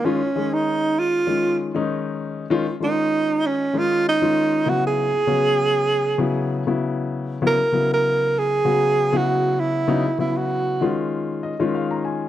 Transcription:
X:1
M:4/4
L:1/16
Q:"Swing 16ths" 1/4=98
K:Ebphr
V:1 name="Tenor saxophone"
D3 E3 =F4 z6 | z2 E4 D2 =F2 E4 G A- | A8- A3 z4 z | B3 B3 A4- A G3 F2- |
F2 F G4 z8 z |]
V:2 name="Grand piano"
z16 | z16 | z16 | z16 |
z8 z2 e2 =f b a2 |]
V:3 name="Grand piano"
[E,A,D=F] [DF] [E,A,DA]4- [E,A,DA] z [E,A,DF]3 [E,A,DE]4- [E,A,DE] | [E,A,D=F] [DF] [E,A,DF]4- [E,A,DF] z [E,A,DE]3 [E,A,DF]3 [D,G,C_F]2- | [D,G,CF] [CF] [D,G,CD]4- [D,G,CD] z [D,G,CF]3 [D,G,CF]4- [D,G,CF] | [D,G,CF] [CF] [D,G,CF]4- [D,G,CF] z [D,G,CG]3 [D,G,CF]4- [D,G,CF] |
[D,G,CE] [CF] [D,G,CF]4 [E,A,D=F]4- [E,A,DF] [E,A,DF]4- [E,A,DF] |]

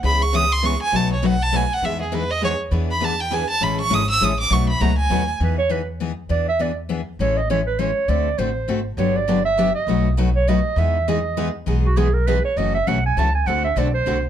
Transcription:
X:1
M:3/4
L:1/16
Q:"Swing" 1/4=201
K:E
V:1 name="Violin"
b2 c'2 d'2 =c'2 ^c'2 g2 | a2 c2 f2 a2 g2 f2 | e2 G2 B2 d2 c2 z2 | z2 b2 a2 =g2 ^g2 a2 |
b2 c'2 d'2 e'2 d'2 =d'2 | c'2 b2 ^a2 g4- g z | z12 | z12 |
z12 | z12 | z12 | z12 |
z12 | z12 | z12 | z12 |]
V:2 name="Clarinet"
z12 | z12 | z12 | z12 |
z12 | z12 | B2 c2 B2 z6 | =d2 e2 d2 z6 |
c2 d2 c2 B2 c4 | =d4 =c6 z2 | c2 =d4 e4 ^d2- | d4 z2 c2 d4 |
e4 d6 z2 | z2 F2 G2 ^A2 B2 c2 | d2 e2 f2 g2 a2 g2 | f2 e2 =d2 =c4- c z |]
V:3 name="Steel-string acoustic guitar"
[C,G,B,EG]2 z2 [C,G,B,EG]2 z2 [C,G,B,EG]2 z2 | [B,,F,A,DFB]2 z2 [B,,F,A,DFB]2 z2 [B,,F,A,DFB]2 z2 | [E,G,B,DG]2 z2 [E,G,B,DG]2 z2 [E,G,B,DG]2 z2 | [E,B,=DGB]2 z2 [E,B,DGB]2 z2 [E,B,DGB]2 z2 |
[E,G,CEA]2 z2 [E,G,CEA]2 z2 [E,G,CEA]2 z2 | [B,,F,A,DFB]2 z2 [B,,F,A,DFB]2 z2 [B,,F,A,DFB]2 z2 | z12 | z12 |
z12 | z12 | [=D,F,B,=D=G]2 z2 [D,F,B,DG]2 z2 [D,F,B,DG]2 z2 | [B,,F,A,DFB]2 z2 [B,,F,A,DFB]2 z2 [B,,F,A,DFB]2 z2 |
[E,G,B,DG]2 z2 [E,G,B,DG]2 z2 [E,G,B,DG]2 z2 | [E,G,B,DG]2 z2 [E,G,B,DG]2 z2 [E,G,B,DG]2 z2 | [F,CEA]2 z2 [F,CEA]2 z2 [F,CEA]2 z2 | [=D,A,=CFA]2 z2 [D,A,CFA]2 z2 [D,A,CFA]2 z2 |]
V:4 name="Steel-string acoustic guitar"
[C,E,B,CG]2 z2 [C,E,B,CG]2 z2 [C,E,B,CG]2 z2 | [B,,F,A,DF]2 z2 [B,,F,A,DF]2 z2 [B,,F,A,DF]2 z2 | [E,B,DG]2 z2 [E,B,DG]2 z2 [E,B,DG]2 z2 | [E,B,=DG]2 z2 [E,B,DG]2 z2 [E,B,DG]2 z2 |
[E,G,CEA]2 z2 [E,G,CEA]2 z2 [E,G,CEA]2 z2 | [B,,F,A,DF]2 z2 [B,,F,A,DF]2 z2 [B,,F,A,DF]2 z2 | [E,B,DG]2 z2 [E,B,DG]2 z2 [E,B,DG]2 z2 | [E,B,=DG]2 z2 [E,B,DG]2 z2 [E,B,DG]2 z2 |
[E,G,CEA]2 z2 [E,G,CEA]2 z2 [E,G,CEA]2 z2 | [=D,A,=CFA]2 z2 [D,A,CFA]2 z2 [D,A,CFA]2 z2 | [=D,F,B,=D=G]2 z2 [D,F,B,DG]2 z2 [D,F,B,DG]2 z2 | [B,,F,A,DF]2 z2 [B,,F,A,DF]2 z2 [B,,F,A,DF]2 z2 |
[E,B,DG]2 z2 [E,B,DG]2 z2 [E,B,DG]2 z2 | [E,B,DG]2 z2 [E,B,DG]2 z2 [E,B,DG]2 z2 | [C,E,A,CF]2 z2 [C,E,A,CF]2 z2 [C,E,A,CF]2 z2 | [=D,A,=CFA]2 z2 [D,A,CFA]2 z2 [D,A,CFA]2 z2 |]
V:5 name="Upright bass" clef=bass
C,,12 | B,,,12 | E,,12 | E,,12 |
A,,,4 G,,,4 A,,,4 | B,,,4 C,,4 z4 | E,,12 | E,,12 |
A,,,12 | =D,,4 A,,,4 G,,,4 | =G,,,12 | B,,,12 |
E,,12 | B,,,12 | F,,,4 B,,,4 C,,4 | =D,,4 B,,,4 =C,,4 |]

